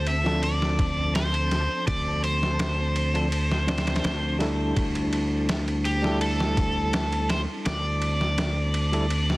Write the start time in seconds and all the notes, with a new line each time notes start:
Already playing: D2 C4 A5
0.06 E5, ride
0.24 F3 C4 D4 A4, snare
0.43 D5, ride
0.62 snare
0.79 kick, ride
1.15 C5, snare, ride
1.34 ride
1.51 snare, ride
1.87 D2 D5, kick, ride
2.24 C5, ride
2.43 snare
2.59 snare, ride
2.96 ride
3.14 F3 C4 D4 A4, ride
3.32 ride
3.51 snare
3.67 F3 C4 D4 C5, snare, ride
3.78 snare, ride
3.87 snare, ride
3.96 snare, ride
4.04 D2, snare, ride
4.39 G3 D4 E4 A4, snare, ride
4.76 D2, kick, ride
4.95 ride
5.13 ride
5.49 snare, ride
5.68 ride
5.85 G4, ride
6.02 G3 D4 E4 A4, snare
6.21 A4, ride
6.40 snare
6.57 kick, ride
6.93 snare, ride
7.12 ride
7.29 C5, snare, ride
7.66 D2 D5, snare, ride
8.02 ride
8.21 snare
8.38 snare, ride
8.74 ride
8.92 G3 D4 E4 A4, ride
9.10 ride
9.30 snare